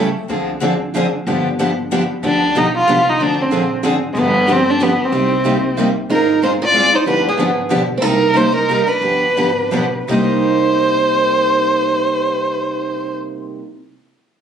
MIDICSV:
0, 0, Header, 1, 5, 480
1, 0, Start_track
1, 0, Key_signature, -3, "minor"
1, 0, Tempo, 322928
1, 441, Time_signature, 3, 2, 24, 8
1, 9060, Key_signature, -3, "minor"
1, 13401, Tempo, 357569
1, 14841, Tempo, 379987
1, 20301, End_track
2, 0, Start_track
2, 0, Title_t, "Violin"
2, 0, Program_c, 0, 40
2, 3341, Note_on_c, 0, 62, 90
2, 3825, Note_on_c, 0, 63, 88
2, 3848, Note_off_c, 0, 62, 0
2, 4104, Note_off_c, 0, 63, 0
2, 4119, Note_on_c, 0, 65, 97
2, 4596, Note_on_c, 0, 63, 86
2, 4618, Note_off_c, 0, 65, 0
2, 4785, Note_on_c, 0, 62, 94
2, 4808, Note_off_c, 0, 63, 0
2, 5077, Note_on_c, 0, 60, 76
2, 5099, Note_off_c, 0, 62, 0
2, 5541, Note_off_c, 0, 60, 0
2, 6137, Note_on_c, 0, 56, 59
2, 6217, Note_on_c, 0, 59, 91
2, 6240, Note_off_c, 0, 56, 0
2, 6715, Note_on_c, 0, 60, 99
2, 6737, Note_off_c, 0, 59, 0
2, 6987, Note_on_c, 0, 62, 95
2, 7009, Note_off_c, 0, 60, 0
2, 7175, Note_on_c, 0, 59, 90
2, 7198, Note_off_c, 0, 62, 0
2, 7489, Note_on_c, 0, 60, 88
2, 7512, Note_off_c, 0, 59, 0
2, 8606, Note_off_c, 0, 60, 0
2, 9103, Note_on_c, 0, 70, 94
2, 9528, Note_off_c, 0, 70, 0
2, 9564, Note_on_c, 0, 72, 93
2, 9690, Note_off_c, 0, 72, 0
2, 9865, Note_on_c, 0, 74, 113
2, 10336, Note_on_c, 0, 72, 85
2, 10358, Note_off_c, 0, 74, 0
2, 10509, Note_off_c, 0, 72, 0
2, 10533, Note_on_c, 0, 71, 90
2, 10789, Note_off_c, 0, 71, 0
2, 10829, Note_on_c, 0, 68, 66
2, 11256, Note_off_c, 0, 68, 0
2, 11896, Note_on_c, 0, 69, 67
2, 11975, Note_on_c, 0, 70, 97
2, 11997, Note_off_c, 0, 69, 0
2, 12434, Note_on_c, 0, 72, 113
2, 12456, Note_off_c, 0, 70, 0
2, 12709, Note_off_c, 0, 72, 0
2, 12718, Note_on_c, 0, 70, 100
2, 13194, Note_on_c, 0, 71, 98
2, 13217, Note_off_c, 0, 70, 0
2, 14639, Note_off_c, 0, 71, 0
2, 14879, Note_on_c, 0, 72, 94
2, 18699, Note_off_c, 0, 72, 0
2, 20301, End_track
3, 0, Start_track
3, 0, Title_t, "Steel-string acoustic guitar"
3, 0, Program_c, 1, 25
3, 9071, Note_on_c, 1, 63, 72
3, 9511, Note_off_c, 1, 63, 0
3, 9565, Note_on_c, 1, 63, 78
3, 9640, Note_off_c, 1, 63, 0
3, 9837, Note_on_c, 1, 65, 76
3, 10308, Note_off_c, 1, 65, 0
3, 10308, Note_on_c, 1, 63, 78
3, 10495, Note_off_c, 1, 63, 0
3, 10514, Note_on_c, 1, 62, 70
3, 10778, Note_off_c, 1, 62, 0
3, 10830, Note_on_c, 1, 59, 59
3, 11256, Note_off_c, 1, 59, 0
3, 11854, Note_on_c, 1, 60, 53
3, 11918, Note_off_c, 1, 60, 0
3, 11918, Note_on_c, 1, 63, 72
3, 12375, Note_off_c, 1, 63, 0
3, 12393, Note_on_c, 1, 63, 78
3, 12650, Note_off_c, 1, 63, 0
3, 12668, Note_on_c, 1, 63, 71
3, 13180, Note_off_c, 1, 63, 0
3, 13180, Note_on_c, 1, 62, 68
3, 14633, Note_off_c, 1, 62, 0
3, 14848, Note_on_c, 1, 63, 62
3, 19267, Note_off_c, 1, 63, 0
3, 20301, End_track
4, 0, Start_track
4, 0, Title_t, "Steel-string acoustic guitar"
4, 0, Program_c, 2, 25
4, 444, Note_on_c, 2, 50, 60
4, 446, Note_on_c, 2, 60, 69
4, 449, Note_on_c, 2, 68, 62
4, 452, Note_on_c, 2, 53, 68
4, 456, Note_on_c, 2, 62, 67
4, 747, Note_off_c, 2, 50, 0
4, 748, Note_off_c, 2, 60, 0
4, 749, Note_off_c, 2, 68, 0
4, 751, Note_off_c, 2, 53, 0
4, 753, Note_off_c, 2, 62, 0
4, 915, Note_on_c, 2, 50, 72
4, 929, Note_on_c, 2, 62, 94
4, 930, Note_on_c, 2, 53, 93
4, 940, Note_on_c, 2, 60, 84
4, 947, Note_on_c, 2, 68, 93
4, 1082, Note_off_c, 2, 50, 0
4, 1089, Note_off_c, 2, 62, 0
4, 1090, Note_off_c, 2, 53, 0
4, 1095, Note_off_c, 2, 60, 0
4, 1098, Note_off_c, 2, 68, 0
4, 1393, Note_on_c, 2, 50, 85
4, 1401, Note_on_c, 2, 60, 97
4, 1405, Note_on_c, 2, 62, 103
4, 1407, Note_on_c, 2, 53, 103
4, 1418, Note_on_c, 2, 68, 114
4, 1561, Note_off_c, 2, 50, 0
4, 1565, Note_off_c, 2, 60, 0
4, 1567, Note_off_c, 2, 62, 0
4, 1568, Note_off_c, 2, 53, 0
4, 1573, Note_off_c, 2, 68, 0
4, 1888, Note_on_c, 2, 53, 58
4, 1891, Note_on_c, 2, 50, 56
4, 1892, Note_on_c, 2, 59, 69
4, 1895, Note_on_c, 2, 62, 66
4, 1897, Note_on_c, 2, 67, 64
4, 2188, Note_off_c, 2, 53, 0
4, 2189, Note_off_c, 2, 50, 0
4, 2190, Note_off_c, 2, 59, 0
4, 2192, Note_off_c, 2, 62, 0
4, 2193, Note_off_c, 2, 67, 0
4, 2361, Note_on_c, 2, 50, 72
4, 2368, Note_on_c, 2, 59, 85
4, 2371, Note_on_c, 2, 53, 85
4, 2371, Note_on_c, 2, 62, 84
4, 2373, Note_on_c, 2, 67, 90
4, 2524, Note_off_c, 2, 50, 0
4, 2528, Note_off_c, 2, 59, 0
4, 2529, Note_off_c, 2, 53, 0
4, 2529, Note_off_c, 2, 62, 0
4, 2530, Note_off_c, 2, 67, 0
4, 2849, Note_on_c, 2, 50, 79
4, 2854, Note_on_c, 2, 53, 84
4, 2858, Note_on_c, 2, 59, 93
4, 2860, Note_on_c, 2, 62, 104
4, 2866, Note_on_c, 2, 67, 92
4, 3008, Note_off_c, 2, 50, 0
4, 3011, Note_off_c, 2, 53, 0
4, 3012, Note_off_c, 2, 59, 0
4, 3013, Note_off_c, 2, 62, 0
4, 3016, Note_off_c, 2, 67, 0
4, 3311, Note_on_c, 2, 50, 56
4, 3318, Note_on_c, 2, 53, 59
4, 3325, Note_on_c, 2, 62, 65
4, 3326, Note_on_c, 2, 67, 70
4, 3329, Note_on_c, 2, 59, 68
4, 3618, Note_off_c, 2, 50, 0
4, 3622, Note_off_c, 2, 53, 0
4, 3625, Note_off_c, 2, 62, 0
4, 3625, Note_off_c, 2, 67, 0
4, 3627, Note_off_c, 2, 59, 0
4, 3790, Note_on_c, 2, 50, 76
4, 3806, Note_on_c, 2, 53, 85
4, 3812, Note_on_c, 2, 62, 91
4, 3812, Note_on_c, 2, 67, 88
4, 3815, Note_on_c, 2, 59, 83
4, 3957, Note_off_c, 2, 50, 0
4, 3965, Note_off_c, 2, 53, 0
4, 3968, Note_off_c, 2, 62, 0
4, 3968, Note_off_c, 2, 67, 0
4, 3970, Note_off_c, 2, 59, 0
4, 4295, Note_on_c, 2, 50, 84
4, 4300, Note_on_c, 2, 53, 99
4, 4303, Note_on_c, 2, 59, 99
4, 4303, Note_on_c, 2, 62, 93
4, 4306, Note_on_c, 2, 67, 102
4, 4449, Note_off_c, 2, 50, 0
4, 4451, Note_off_c, 2, 53, 0
4, 4453, Note_off_c, 2, 59, 0
4, 4453, Note_off_c, 2, 62, 0
4, 4454, Note_off_c, 2, 67, 0
4, 4751, Note_on_c, 2, 53, 69
4, 4755, Note_on_c, 2, 50, 59
4, 4755, Note_on_c, 2, 60, 67
4, 4760, Note_on_c, 2, 68, 58
4, 4764, Note_on_c, 2, 62, 69
4, 5056, Note_off_c, 2, 53, 0
4, 5058, Note_off_c, 2, 50, 0
4, 5058, Note_off_c, 2, 60, 0
4, 5060, Note_off_c, 2, 68, 0
4, 5062, Note_off_c, 2, 62, 0
4, 5217, Note_on_c, 2, 50, 93
4, 5218, Note_on_c, 2, 53, 90
4, 5224, Note_on_c, 2, 60, 86
4, 5234, Note_on_c, 2, 68, 101
4, 5240, Note_on_c, 2, 62, 79
4, 5388, Note_off_c, 2, 50, 0
4, 5389, Note_off_c, 2, 53, 0
4, 5392, Note_off_c, 2, 60, 0
4, 5397, Note_off_c, 2, 68, 0
4, 5400, Note_off_c, 2, 62, 0
4, 5692, Note_on_c, 2, 50, 88
4, 5692, Note_on_c, 2, 62, 99
4, 5697, Note_on_c, 2, 53, 90
4, 5697, Note_on_c, 2, 60, 112
4, 5703, Note_on_c, 2, 68, 109
4, 5865, Note_off_c, 2, 50, 0
4, 5865, Note_off_c, 2, 62, 0
4, 5867, Note_off_c, 2, 60, 0
4, 5868, Note_off_c, 2, 53, 0
4, 5871, Note_off_c, 2, 68, 0
4, 6185, Note_on_c, 2, 50, 59
4, 6185, Note_on_c, 2, 53, 59
4, 6188, Note_on_c, 2, 59, 67
4, 6202, Note_on_c, 2, 67, 59
4, 6205, Note_on_c, 2, 62, 66
4, 6490, Note_off_c, 2, 53, 0
4, 6491, Note_off_c, 2, 50, 0
4, 6492, Note_off_c, 2, 59, 0
4, 6499, Note_off_c, 2, 67, 0
4, 6500, Note_off_c, 2, 62, 0
4, 6639, Note_on_c, 2, 50, 80
4, 6645, Note_on_c, 2, 59, 89
4, 6653, Note_on_c, 2, 53, 81
4, 6654, Note_on_c, 2, 67, 94
4, 6658, Note_on_c, 2, 62, 92
4, 6817, Note_off_c, 2, 50, 0
4, 6820, Note_off_c, 2, 59, 0
4, 6824, Note_off_c, 2, 53, 0
4, 6825, Note_off_c, 2, 67, 0
4, 6826, Note_off_c, 2, 62, 0
4, 7147, Note_on_c, 2, 50, 92
4, 7149, Note_on_c, 2, 53, 93
4, 7157, Note_on_c, 2, 62, 105
4, 7160, Note_on_c, 2, 59, 90
4, 7173, Note_on_c, 2, 67, 91
4, 7310, Note_off_c, 2, 50, 0
4, 7311, Note_off_c, 2, 53, 0
4, 7315, Note_off_c, 2, 62, 0
4, 7317, Note_off_c, 2, 59, 0
4, 7323, Note_off_c, 2, 67, 0
4, 7628, Note_on_c, 2, 48, 63
4, 7633, Note_on_c, 2, 55, 64
4, 7640, Note_on_c, 2, 58, 66
4, 7640, Note_on_c, 2, 67, 68
4, 7646, Note_on_c, 2, 63, 67
4, 7929, Note_off_c, 2, 48, 0
4, 7932, Note_off_c, 2, 55, 0
4, 7935, Note_off_c, 2, 58, 0
4, 7935, Note_off_c, 2, 67, 0
4, 7938, Note_off_c, 2, 63, 0
4, 8084, Note_on_c, 2, 48, 91
4, 8090, Note_on_c, 2, 55, 88
4, 8096, Note_on_c, 2, 63, 84
4, 8098, Note_on_c, 2, 67, 86
4, 8104, Note_on_c, 2, 58, 87
4, 8257, Note_off_c, 2, 48, 0
4, 8260, Note_off_c, 2, 55, 0
4, 8263, Note_off_c, 2, 63, 0
4, 8264, Note_off_c, 2, 67, 0
4, 8267, Note_off_c, 2, 58, 0
4, 8574, Note_on_c, 2, 48, 93
4, 8579, Note_on_c, 2, 55, 84
4, 8582, Note_on_c, 2, 63, 106
4, 8591, Note_on_c, 2, 58, 101
4, 8594, Note_on_c, 2, 67, 95
4, 8741, Note_off_c, 2, 48, 0
4, 8744, Note_off_c, 2, 55, 0
4, 8745, Note_off_c, 2, 63, 0
4, 8750, Note_off_c, 2, 58, 0
4, 8751, Note_off_c, 2, 67, 0
4, 9069, Note_on_c, 2, 56, 58
4, 9071, Note_on_c, 2, 60, 66
4, 9073, Note_on_c, 2, 65, 69
4, 9080, Note_on_c, 2, 68, 69
4, 9368, Note_off_c, 2, 56, 0
4, 9368, Note_off_c, 2, 60, 0
4, 9369, Note_off_c, 2, 65, 0
4, 9373, Note_off_c, 2, 68, 0
4, 9540, Note_on_c, 2, 56, 76
4, 9544, Note_on_c, 2, 60, 77
4, 9550, Note_on_c, 2, 65, 95
4, 9558, Note_on_c, 2, 68, 92
4, 9703, Note_off_c, 2, 56, 0
4, 9705, Note_off_c, 2, 60, 0
4, 9708, Note_off_c, 2, 65, 0
4, 9712, Note_off_c, 2, 68, 0
4, 10007, Note_on_c, 2, 56, 93
4, 10020, Note_on_c, 2, 65, 90
4, 10023, Note_on_c, 2, 60, 98
4, 10034, Note_on_c, 2, 68, 93
4, 10176, Note_off_c, 2, 56, 0
4, 10182, Note_off_c, 2, 65, 0
4, 10183, Note_off_c, 2, 60, 0
4, 10189, Note_off_c, 2, 68, 0
4, 10493, Note_on_c, 2, 50, 54
4, 10496, Note_on_c, 2, 53, 63
4, 10500, Note_on_c, 2, 59, 62
4, 10505, Note_on_c, 2, 67, 76
4, 10506, Note_on_c, 2, 62, 60
4, 10798, Note_off_c, 2, 50, 0
4, 10799, Note_off_c, 2, 53, 0
4, 10801, Note_off_c, 2, 59, 0
4, 10803, Note_off_c, 2, 67, 0
4, 10804, Note_off_c, 2, 62, 0
4, 10961, Note_on_c, 2, 50, 75
4, 10961, Note_on_c, 2, 59, 89
4, 10963, Note_on_c, 2, 62, 81
4, 10965, Note_on_c, 2, 53, 82
4, 10973, Note_on_c, 2, 67, 86
4, 11131, Note_off_c, 2, 50, 0
4, 11132, Note_off_c, 2, 59, 0
4, 11132, Note_off_c, 2, 62, 0
4, 11133, Note_off_c, 2, 53, 0
4, 11137, Note_off_c, 2, 67, 0
4, 11432, Note_on_c, 2, 50, 93
4, 11439, Note_on_c, 2, 53, 89
4, 11449, Note_on_c, 2, 59, 91
4, 11456, Note_on_c, 2, 67, 110
4, 11459, Note_on_c, 2, 62, 103
4, 11606, Note_off_c, 2, 50, 0
4, 11610, Note_off_c, 2, 53, 0
4, 11615, Note_off_c, 2, 59, 0
4, 11618, Note_off_c, 2, 67, 0
4, 11620, Note_off_c, 2, 62, 0
4, 11928, Note_on_c, 2, 48, 66
4, 11937, Note_on_c, 2, 55, 60
4, 11940, Note_on_c, 2, 67, 61
4, 11941, Note_on_c, 2, 58, 62
4, 11944, Note_on_c, 2, 63, 60
4, 12234, Note_off_c, 2, 48, 0
4, 12239, Note_off_c, 2, 55, 0
4, 12241, Note_off_c, 2, 58, 0
4, 12241, Note_off_c, 2, 67, 0
4, 12242, Note_off_c, 2, 63, 0
4, 12410, Note_on_c, 2, 48, 85
4, 12425, Note_on_c, 2, 55, 74
4, 12425, Note_on_c, 2, 58, 91
4, 12437, Note_on_c, 2, 63, 84
4, 12442, Note_on_c, 2, 67, 84
4, 12577, Note_off_c, 2, 48, 0
4, 12585, Note_off_c, 2, 55, 0
4, 12585, Note_off_c, 2, 58, 0
4, 12591, Note_off_c, 2, 63, 0
4, 12594, Note_off_c, 2, 67, 0
4, 12911, Note_on_c, 2, 48, 84
4, 12911, Note_on_c, 2, 58, 104
4, 12914, Note_on_c, 2, 55, 93
4, 12924, Note_on_c, 2, 67, 102
4, 12925, Note_on_c, 2, 63, 94
4, 13075, Note_off_c, 2, 48, 0
4, 13075, Note_off_c, 2, 58, 0
4, 13076, Note_off_c, 2, 55, 0
4, 13082, Note_off_c, 2, 63, 0
4, 13082, Note_off_c, 2, 67, 0
4, 13417, Note_on_c, 2, 50, 56
4, 13419, Note_on_c, 2, 59, 59
4, 13423, Note_on_c, 2, 53, 57
4, 13425, Note_on_c, 2, 67, 65
4, 13427, Note_on_c, 2, 62, 62
4, 13700, Note_off_c, 2, 50, 0
4, 13701, Note_off_c, 2, 59, 0
4, 13703, Note_off_c, 2, 53, 0
4, 13704, Note_off_c, 2, 67, 0
4, 13705, Note_off_c, 2, 62, 0
4, 13871, Note_on_c, 2, 50, 79
4, 13880, Note_on_c, 2, 53, 71
4, 13881, Note_on_c, 2, 59, 78
4, 13883, Note_on_c, 2, 67, 85
4, 13884, Note_on_c, 2, 62, 80
4, 14028, Note_off_c, 2, 50, 0
4, 14033, Note_off_c, 2, 53, 0
4, 14033, Note_off_c, 2, 59, 0
4, 14034, Note_off_c, 2, 67, 0
4, 14035, Note_off_c, 2, 62, 0
4, 14332, Note_on_c, 2, 50, 84
4, 14334, Note_on_c, 2, 53, 92
4, 14337, Note_on_c, 2, 62, 98
4, 14344, Note_on_c, 2, 59, 92
4, 14345, Note_on_c, 2, 67, 99
4, 14505, Note_off_c, 2, 50, 0
4, 14505, Note_off_c, 2, 53, 0
4, 14507, Note_off_c, 2, 62, 0
4, 14511, Note_off_c, 2, 59, 0
4, 14511, Note_off_c, 2, 67, 0
4, 14823, Note_on_c, 2, 48, 70
4, 14836, Note_on_c, 2, 55, 70
4, 14845, Note_on_c, 2, 58, 70
4, 14855, Note_on_c, 2, 63, 78
4, 14863, Note_on_c, 2, 67, 76
4, 19293, Note_off_c, 2, 48, 0
4, 19306, Note_off_c, 2, 55, 0
4, 19314, Note_off_c, 2, 58, 0
4, 19325, Note_off_c, 2, 63, 0
4, 19332, Note_off_c, 2, 67, 0
4, 20301, End_track
5, 0, Start_track
5, 0, Title_t, "Upright bass"
5, 0, Program_c, 3, 32
5, 433, Note_on_c, 3, 38, 85
5, 1588, Note_off_c, 3, 38, 0
5, 1880, Note_on_c, 3, 31, 92
5, 3030, Note_off_c, 3, 31, 0
5, 3311, Note_on_c, 3, 38, 83
5, 3697, Note_off_c, 3, 38, 0
5, 3785, Note_on_c, 3, 35, 72
5, 4197, Note_off_c, 3, 35, 0
5, 4273, Note_on_c, 3, 36, 80
5, 4681, Note_off_c, 3, 36, 0
5, 4742, Note_on_c, 3, 38, 87
5, 5130, Note_off_c, 3, 38, 0
5, 5224, Note_on_c, 3, 34, 77
5, 5634, Note_off_c, 3, 34, 0
5, 5708, Note_on_c, 3, 32, 69
5, 6116, Note_off_c, 3, 32, 0
5, 6164, Note_on_c, 3, 31, 94
5, 7322, Note_off_c, 3, 31, 0
5, 7612, Note_on_c, 3, 36, 96
5, 8765, Note_off_c, 3, 36, 0
5, 9059, Note_on_c, 3, 32, 88
5, 10208, Note_off_c, 3, 32, 0
5, 10498, Note_on_c, 3, 31, 82
5, 10880, Note_off_c, 3, 31, 0
5, 10983, Note_on_c, 3, 32, 68
5, 11386, Note_off_c, 3, 32, 0
5, 11455, Note_on_c, 3, 35, 77
5, 11861, Note_off_c, 3, 35, 0
5, 11940, Note_on_c, 3, 36, 97
5, 13111, Note_off_c, 3, 36, 0
5, 13394, Note_on_c, 3, 31, 87
5, 13767, Note_off_c, 3, 31, 0
5, 13869, Note_on_c, 3, 32, 73
5, 14273, Note_off_c, 3, 32, 0
5, 14337, Note_on_c, 3, 35, 68
5, 14763, Note_off_c, 3, 35, 0
5, 14831, Note_on_c, 3, 36, 90
5, 19250, Note_off_c, 3, 36, 0
5, 20301, End_track
0, 0, End_of_file